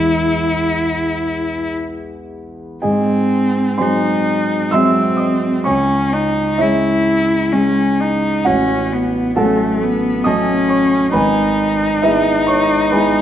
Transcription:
Already playing: E2 E3 G#3 E4
2.82 G#2 C4 G#4 D#5 G#5
3.78 F#3 G#3 C4 C5 G#5 C6
3.82 D#4
4.71 F#3 G#3 C4 E5 C6 E6
5.17 D#5 D#6
5.64 C#2 C#4 C#5 G#5 C#6
6.13 D#4
6.58 G#3 C#4 E4 C#5 E5
7.53 G#3 C#4
8.00 D#4
8.45 A1 C#4 F#4 C#5 F#5
8.93 B3
9.36 F#3 A3 C#4 A4 F#5 A5
9.82 B3
10.24 F#3 A3 C#4 D#5 A5 D#6
10.69 C#5 C#6
11.12 G#1 D#4 B4 G#5 B5
12.02 G#3 B3 E4 B4 E5
12.47 C#5 C#6
12.91 G#3 B3 E4 B4 G#5 B5

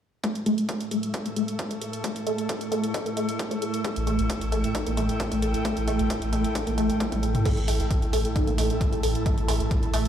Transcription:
0.24 A2 A3 E4, kick, closed hi-hat
0.35 closed hi-hat
0.46 A3, closed hi-hat
0.58 closed hi-hat
0.69 kick, closed hi-hat
0.74 A4 A5
0.81 closed hi-hat
0.91 A3, closed hi-hat
1.03 closed hi-hat
1.14 kick, closed hi-hat
1.26 A#3, closed hi-hat
1.36 A3, closed hi-hat
1.48 closed hi-hat
1.59 kick, closed hi-hat
1.71 A3, closed hi-hat
1.81 A4, closed hi-hat
1.93 closed hi-hat
2.04 A3, kick, closed hi-hat
2.16 closed hi-hat
2.27 A3, closed hi-hat
2.38 closed hi-hat
2.49 kick, closed hi-hat
2.61 closed hi-hat
2.72 A3, closed hi-hat
2.84 closed hi-hat
2.94 D#4, kick, closed hi-hat
3.06 A#3, closed hi-hat
3.17 A3, closed hi-hat
3.29 closed hi-hat
3.39 kick, closed hi-hat
3.51 A3, closed hi-hat
3.62 A4, closed hi-hat
3.74 closed hi-hat
3.84 A3, kick, closed hi-hat
3.96 A1 G5, closed hi-hat
4.07 A1 A3, closed hi-hat
4.19 A1, closed hi-hat
4.30 kick, closed hi-hat
4.41 A1, closed hi-hat
4.52 A1 A3, closed hi-hat
4.64 closed hi-hat
4.75 D#4, kick, closed hi-hat
4.86 A1 A#3, closed hi-hat
4.97 A1 A3, closed hi-hat
5.09 closed hi-hat
5.20 kick, closed hi-hat
5.32 A1 A3, closed hi-hat
5.42 A1 A4, closed hi-hat
5.54 closed hi-hat
5.65 A3, kick, closed hi-hat
5.77 A1, closed hi-hat
5.88 A1 A3, closed hi-hat
5.99 A1, closed hi-hat
6.10 kick, closed hi-hat
6.22 A1, closed hi-hat
6.33 A1 A3, closed hi-hat
6.44 closed hi-hat
6.55 D#4, kick, closed hi-hat
6.67 A1 A#3, closed hi-hat
6.78 A1 A3, closed hi-hat
6.90 closed hi-hat
7.00 kick, closed hi-hat, high tom
7.12 A1 A3, closed hi-hat, high tom
7.23 A1 A4, closed hi-hat
7.35 closed hi-hat, mid tom
7.45 A2 A3, kick, closed hi-hat, crash
7.57 A1, closed hi-hat
7.68 A1 A3, open hi-hat
7.80 A1, closed hi-hat
7.91 kick, closed hi-hat
8.02 A1, closed hi-hat
8.13 A1 A3, open hi-hat
8.25 closed hi-hat
8.36 D#4, kick, closed hi-hat
8.44 A1 A#3 A5, closed hi-hat
8.58 A1 A3, open hi-hat
8.70 closed hi-hat
8.81 kick, closed hi-hat
8.93 A1 A3, closed hi-hat
9.03 A1 A4, open hi-hat
9.15 closed hi-hat
9.26 A3, kick, closed hi-hat
9.38 A1, closed hi-hat
9.48 A1 A3, open hi-hat
9.60 A1, closed hi-hat
9.71 kick, closed hi-hat
9.83 A1, closed hi-hat
9.94 A1 A3, open hi-hat

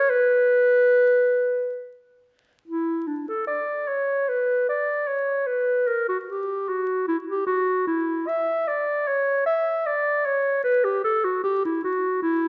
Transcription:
Already playing: C#5
0.10 B4
2.68 E4
3.07 D4
3.28 A4
3.47 D5
3.88 C#5
4.29 B4
4.69 D5
5.07 C#5
5.47 B4
5.87 A#4
6.09 F#4
6.28 G4
6.69 F#4
7.08 E4
7.28 G4
7.46 F#4
7.87 E4
8.27 E5
8.68 D5
9.08 C#5
9.46 E5
9.86 D5
10.26 C#5
10.64 B4
10.84 G4
11.04 A4
11.24 F#4
11.44 G4
11.65 E4
11.84 F#4
12.22 E4

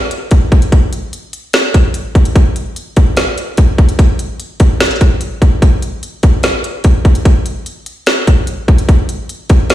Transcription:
0.11 closed hi-hat
0.31 kick, closed hi-hat
0.52 kick, closed hi-hat
0.62 closed hi-hat
0.72 kick, closed hi-hat
0.93 closed hi-hat
1.13 closed hi-hat
1.33 closed hi-hat
1.53 snare, closed hi-hat
1.74 kick, closed hi-hat
1.94 closed hi-hat
2.15 kick, closed hi-hat
2.25 closed hi-hat
2.36 kick, closed hi-hat
2.56 closed hi-hat
2.76 closed hi-hat
2.96 kick, closed hi-hat
3.17 snare, closed hi-hat
3.38 closed hi-hat
3.57 kick, closed hi-hat
3.78 kick, closed hi-hat
3.89 closed hi-hat
3.99 kick, closed hi-hat
4.19 closed hi-hat
4.40 closed hi-hat
4.60 kick, closed hi-hat
4.80 snare, closed hi-hat
4.86 closed hi-hat
4.91 closed hi-hat
4.96 closed hi-hat
5.01 kick, closed hi-hat
5.21 closed hi-hat
5.42 kick, closed hi-hat
5.62 kick, closed hi-hat
5.82 closed hi-hat
6.03 closed hi-hat
6.23 kick, closed hi-hat
6.43 snare, closed hi-hat
6.64 closed hi-hat
6.84 kick, closed hi-hat
7.05 kick, closed hi-hat
7.15 closed hi-hat
7.25 kick, closed hi-hat
7.46 closed hi-hat
7.66 closed hi-hat
7.86 closed hi-hat
8.06 snare, closed hi-hat
8.27 kick, closed hi-hat
8.47 closed hi-hat
8.68 kick, closed hi-hat
8.78 closed hi-hat
8.89 kick, closed hi-hat
9.09 closed hi-hat
9.29 closed hi-hat
9.50 kick, closed hi-hat
9.70 snare, closed hi-hat

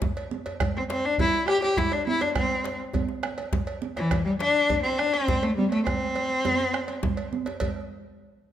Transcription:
0.02 bombo low, djembe slap, djembe bass, low conga
0.17 cowbell, djembe slap
0.31 high conga
0.46 cowbell, djembe tone
0.60 bombo rim, bombo low, cowbell, djembe slap, high conga, djembe bass, low conga
0.77 C4
0.90 C4, cowbell, djembe slap
1.04 D4, bombo rim, djembe slap
1.18 E4, bombo low, cowbell, high conga, low conga, djembe bass
1.34 djembe tone
1.48 G4, bombo rim, cowbell, high conga
1.62 G4, bombo rim, cowbell, high conga
1.77 E4, bombo rim, bombo low, djembe slap, low conga, djembe bass
1.92 D4, bombo rim, cowbell
2.07 E4, djembe slap, high conga
2.21 D4, bombo rim, cowbell, djembe tone
2.35 C4, bombo rim, bombo low, cowbell, djembe slap, high conga, djembe bass, low conga
2.64 cowbell, djembe slap
2.79 bombo rim, djembe slap
2.93 bombo low, cowbell, high conga, djembe bass, low conga
3.09 djembe tone
3.23 bombo rim, cowbell, high conga
3.38 bombo rim, cowbell, high conga
3.53 bombo rim, bombo low, djembe slap, djembe bass, low conga
3.67 bombo rim, cowbell
3.82 djembe slap, high conga
3.96 E3, bombo rim, cowbell, djembe tone
4.11 bombo rim, bombo low, cowbell, djembe slap, high conga, djembe bass, low conga
4.25 G3
4.39 D4, cowbell, djembe slap
4.56 djembe slap
4.69 bombo low, cowbell, high conga, djembe bass, low conga
4.83 C4, djembe tone
4.98 D4, bombo rim, cowbell, high conga
5.13 C4, bombo rim, cowbell, high conga
5.28 bombo rim, bombo low, djembe slap, djembe bass, low conga
5.42 A3, bombo rim, cowbell
5.57 G3, djembe slap, high conga
5.71 A3, bombo rim, cowbell
5.86 C4, bombo rim, bombo low, cowbell, high conga, low conga, djembe bass
6.02 high conga
6.16 cowbell, high conga
6.30 djembe slap
6.45 bombo rim, cowbell, high conga, low conga, djembe bass
6.60 high conga, djembe tone
6.74 bombo rim, cowbell
6.88 cowbell, high conga
7.03 bombo rim, bombo low, djembe slap, low conga, djembe bass
7.17 cowbell
7.33 high conga
7.46 cowbell, high conga, djembe tone
7.60 bombo low, cowbell, low conga, djembe bass

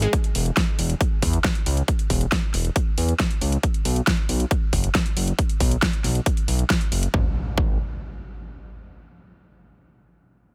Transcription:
0.02 G#3, closed hi-hat
0.13 kick, closed hi-hat
0.24 closed hi-hat
0.35 E1, open hi-hat
0.46 closed hi-hat
0.57 kick, snare, closed hi-hat
0.79 E1, open hi-hat
0.90 closed hi-hat
1.01 kick, closed hi-hat
1.22 E2, kick, open hi-hat
1.33 closed hi-hat
1.44 kick, snare, closed hi-hat
1.55 closed hi-hat
1.66 C#2, open hi-hat
1.77 closed hi-hat
1.88 kick, closed hi-hat
1.99 closed hi-hat
2.10 E1, kick, open hi-hat
2.21 closed hi-hat
2.32 kick, snare, closed hi-hat
2.54 E1, snare, open hi-hat
2.65 closed hi-hat
2.76 kick, closed hi-hat
2.98 E2, open hi-hat
3.09 closed hi-hat
3.20 kick, snare, closed hi-hat
3.31 closed hi-hat
3.41 C#2, open hi-hat
3.52 closed hi-hat
3.63 kick, closed hi-hat
3.74 closed hi-hat
3.85 B1, open hi-hat
3.96 closed hi-hat
4.07 kick, snare, closed hi-hat
4.29 B1, open hi-hat
4.40 closed hi-hat
4.51 kick, closed hi-hat
4.73 F#1, kick, open hi-hat
4.84 closed hi-hat
4.95 kick, snare, closed hi-hat
5.06 closed hi-hat
5.17 F#1, open hi-hat
5.28 closed hi-hat
5.39 kick, closed hi-hat
5.49 closed hi-hat
5.60 B1, kick, open hi-hat
5.71 closed hi-hat
5.82 kick, snare, closed hi-hat
5.93 closed hi-hat
6.04 B1, snare, open hi-hat
6.15 closed hi-hat
6.26 kick, closed hi-hat
6.37 closed hi-hat
6.48 B1, open hi-hat
6.59 closed hi-hat
6.70 kick, snare, closed hi-hat
6.81 closed hi-hat
6.92 F#1, open hi-hat
7.03 closed hi-hat
7.14 G#1, kick, impact
7.58 G#1, kick

